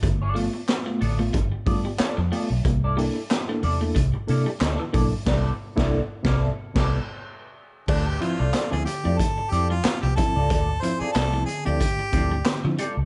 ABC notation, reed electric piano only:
X:1
M:4/4
L:1/16
Q:"Swing 16ths" 1/4=92
K:Dm
V:1 name="Reed electric piano"
[G,,D,] z [A,=B,F] [B,F] z [A,B,F] [G,,D,] [A,B,F] [G,,D,] z [A,B,F] [B,F] z2 [A,B,F] z | [C,G,] z [B,DEA] [EA] z [B,DEA] [C,G,] [B,DEA] [C,G,] z [B,DEA] [EA] z2 [B,DEA] z | [C,G,]2 z [B,DEA]2 z [C,G,]2 z [C,G,]2 z4 z | D, z [F,CE] z2 [F,CE] D, [F,CE] D, z [F,CE] [CE] z2 [F,CE] z |
D, z [F,CE] [CE] z [F,CE] D, [F,CE] D, z [F,CE] [CE] D, [F,CE] [CE] z |]